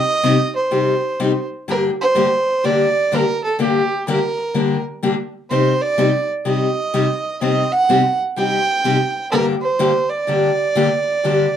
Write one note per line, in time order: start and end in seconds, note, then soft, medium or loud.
0.00 0.50 D#5 loud
0.23 0.35 C3 medium
0.23 0.35 G3 medium
0.23 0.35 C4 medium
0.23 0.36 D#4 medium
0.23 0.36 G4 medium
0.56 1.47 C5 medium
0.71 0.93 C3 medium
0.71 0.93 G3 medium
0.71 0.93 C4 medium
0.71 0.93 D#4 medium
0.71 0.93 G4 medium
1.20 1.31 C3 medium
1.20 1.31 G3 medium
1.20 1.31 C4 medium
1.20 1.32 D#4 medium
1.20 1.31 G4 medium
1.68 1.89 G2 medium
1.68 1.89 D3 medium
1.68 1.89 G3 medium
1.68 1.89 A#3 medium
1.68 1.90 D4 medium
1.68 1.90 G4 medium
1.68 1.84 A#4 medium
2.01 2.66 C5 loud
2.15 2.26 G2 medium
2.15 2.27 D3 medium
2.15 2.27 G3 medium
2.15 2.27 A#3 medium
2.15 2.27 D4 medium
2.15 2.27 G4 loud
2.64 2.85 G2 medium
2.64 2.85 D3 medium
2.64 2.85 G3 medium
2.64 2.85 A#3 medium
2.64 2.85 D4 medium
2.64 2.86 G4 medium
2.64 3.16 D5 loud
3.12 3.23 G2 medium
3.12 3.23 D3 medium
3.12 3.23 G3 medium
3.12 3.23 A#3 medium
3.12 3.23 D4 medium
3.12 3.23 G4 medium
3.12 3.43 A#4 loud
3.44 3.59 A4 medium
3.59 3.80 G2 medium
3.59 3.80 D3 medium
3.59 3.80 G3 medium
3.59 3.80 A#3 medium
3.59 3.81 D4 medium
3.59 3.81 G4 medium
3.59 4.05 G4 medium
4.07 4.18 G2 medium
4.07 4.18 D3 medium
4.07 4.19 G3 loud
4.07 4.19 A#3 medium
4.07 4.19 D4 medium
4.07 4.19 G4 medium
4.07 4.81 A#4 medium
4.54 4.76 G2 medium
4.54 4.76 D3 medium
4.54 4.76 G3 medium
4.54 4.76 A#3 medium
4.54 4.76 D4 medium
4.54 4.76 G4 medium
5.03 5.14 G2 medium
5.03 5.14 D3 medium
5.03 5.14 G3 medium
5.03 5.14 A#3 medium
5.03 5.14 D4 medium
5.03 5.14 G4 medium
5.50 5.72 C3 medium
5.50 5.72 G3 medium
5.50 5.72 C4 medium
5.50 5.72 D#4 medium
5.50 5.72 G4 medium
5.50 5.83 C5 medium
5.82 6.29 D5 loud
5.98 6.09 C3 medium
5.98 6.09 G3 medium
5.98 6.09 C4 medium
5.98 6.10 D#4 medium
5.98 6.10 G4 loud
6.45 6.67 C3 medium
6.45 6.67 G3 medium
6.45 6.67 C4 medium
6.45 6.67 D#4 medium
6.45 6.67 G4 medium
6.45 7.37 D#5 medium
6.94 7.05 C3 medium
6.94 7.05 G3 medium
6.94 7.05 C4 medium
6.94 7.05 D#4 medium
6.94 7.05 G4 medium
7.41 7.62 C3 medium
7.41 7.63 G3 medium
7.41 7.63 C4 medium
7.41 7.63 D#4 medium
7.41 7.63 G4 medium
7.41 7.74 D#5 medium
7.73 8.20 F#5 medium
7.89 8.00 C3 medium
7.89 8.01 G3 medium
7.89 8.01 C4 medium
7.89 8.01 D#4 medium
7.89 8.01 G4 medium
8.36 8.58 C3 medium
8.36 8.58 G3 medium
8.36 8.59 C4 medium
8.36 8.59 D#4 medium
8.36 8.59 G4 medium
8.36 9.28 G5 loud
8.84 8.96 C3 medium
8.84 8.96 G3 medium
8.84 8.96 C4 medium
8.84 8.96 D#4 medium
8.84 8.96 G4 medium
9.31 9.54 G2 medium
9.31 9.54 D3 medium
9.31 9.54 G3 medium
9.31 9.54 A#3 medium
9.31 9.54 D4 medium
9.31 9.54 G4 medium
9.31 9.45 A#4 medium
9.62 10.11 C5 medium
9.79 9.91 G2 medium
9.79 9.91 D3 medium
9.79 9.91 G3 medium
9.79 9.91 A#3 medium
9.79 9.91 D4 loud
9.79 9.92 G4 medium
10.09 11.57 D5 loud
10.27 10.49 G2 medium
10.27 10.49 D3 medium
10.27 10.50 G3 medium
10.27 10.50 A#3 medium
10.27 10.50 D4 medium
10.27 10.50 G4 medium
10.75 10.87 G2 medium
10.75 10.87 D3 medium
10.75 10.87 G3 medium
10.75 10.88 A#3 medium
10.75 10.88 D4 medium
10.75 10.88 G4 loud
11.24 11.45 G2 medium
11.24 11.45 D3 medium
11.24 11.46 G3 medium
11.24 11.46 A#3 medium
11.24 11.46 D4 medium
11.24 11.46 G4 medium